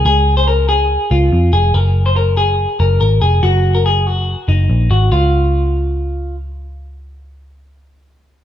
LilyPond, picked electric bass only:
\new Staff \with { instrumentName = "Picked electric bass" } { \clef bass \time 4/4 \key des \major \tempo 4 = 142 des,2~ des,16 r16 des,8 f,8 f,,8 | ges,,2~ ges,,16 r16 ges,,8 aes,,8 f,,8 | ges,,2~ ges,,16 r16 ges,,8 bes,,8 aes,,8 | des,1~ |
des,1 | }